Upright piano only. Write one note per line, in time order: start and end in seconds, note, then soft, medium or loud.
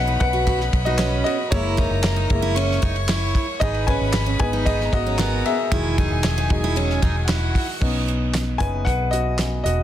0.00 1.53 B3 medium
0.00 1.54 C#4 medium
0.00 1.53 D#4 medium
0.00 0.87 F#4 medium
0.00 0.21 B4 medium
0.00 1.51 C#5 medium
0.00 0.85 D#5 medium
0.00 0.20 F#5 loud
0.20 0.82 B4 medium
0.20 0.88 F#5 loud
0.85 1.23 F#4 medium
0.85 1.23 D#5 medium
1.24 1.50 F#4 medium
1.24 1.52 D#5 medium
1.51 2.29 G#3 medium
1.51 2.29 A#3 medium
1.51 2.30 E4 medium
1.51 3.04 C#5 medium
2.31 2.54 G#3 soft
2.31 2.54 A#3 soft
2.31 2.54 E4 medium
3.60 3.86 G#4 medium
3.60 3.88 D#5 loud
3.87 4.37 B4 medium
3.87 4.36 G#5 loud
4.39 5.67 G#3 medium
4.39 5.67 B3 medium
4.39 5.67 D#4 medium
4.39 4.65 B4 medium
4.39 4.67 G#5 loud
4.65 4.91 G#4 medium
4.65 4.92 D#5 medium
4.93 5.42 F#4 medium
4.93 5.47 D#5 loud
5.46 6.99 G#4 medium
5.46 6.99 E5 medium
5.71 6.07 D#3 medium
5.71 6.06 F#3 medium
5.71 6.07 G#3 medium
6.50 6.74 F#3 soft
6.50 6.74 G#3 soft
6.50 6.74 D#4 medium
7.81 8.16 B3 soft
7.81 8.16 C#4 soft
7.81 8.16 D#4 medium
8.58 8.83 B3 soft
8.58 8.83 C#4 soft
8.58 8.84 D#4 soft
8.58 8.85 B4 medium
8.58 8.86 G#5 medium
8.85 9.11 B4 medium
8.85 9.13 F#5 medium
9.11 9.62 F#4 medium
9.11 9.62 D#5 medium
9.64 9.83 F#4 medium
9.64 9.83 D#5 medium